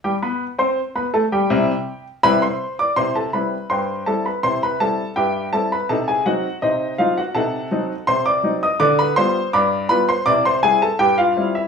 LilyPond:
<<
  \new Staff \with { instrumentName = "Upright piano" } { \time 2/4 \key c \major \tempo 4 = 82 << { r2 | r4 <b' b''>16 <c'' c'''>8 <d'' d'''>16 | <c'' c'''>16 <a' a''>16 <b' b''>8 <c'' g'' c'''>8 <a' a''>16 <b' b''>16 | <c'' c'''>16 <b' b''>16 <a' a''>8 <g' e'' g''>8 <a' a''>16 <b' b''>16 |
<a' a''>16 <aes' aes''>16 <ges' ges''>8 <ees' c'' ees''>8 <f' f''>16 <ges' ges''>16 | <a' ges'' a''>4 <c'' c'''>16 <d'' d'''>8 <ees'' ees'''>16 | <d'' d'''>16 <b' b''>16 <c'' c'''>8 <d'' b'' d'''>8 <b' b''>16 <c'' c'''>16 | <d'' d'''>16 <c'' c'''>16 <aes' aes''>16 <a' a''>16 <g' g''>16 <f' f''>8 <e' e''>16 | } \\ { <g g' g''>16 <b b' b''>8 <c' c'' c'''>8 <b b' b''>16 <a a' a''>16 <g g' g''>16~ | <g g' g''>4. r8 | <c e'>8 <g c' e'>8 g,8 <g c' e'>8 | <c e'>8 <g c' e'>8 g,8 <g c' e'>8 |
<c ees'>8 <ges c' ees'>8 c8 <ges c' ees'>8 | <c ees'>8 <ges c' ees'>8 c8 <ges c' ees'>8 | d8 <g b f'>8 g,8 <g b f'>8 | <c e'>8 <g c' e'>8 g,8 <g c' e'>8 | } >> }
  \new Staff \with { instrumentName = "Upright piano" } { \time 2/4 \key c \major r2 | <c g c' e'>8 r8 <c g c' e'>8 r8 | r2 | r2 |
r2 | r2 | r2 | r2 | }
>>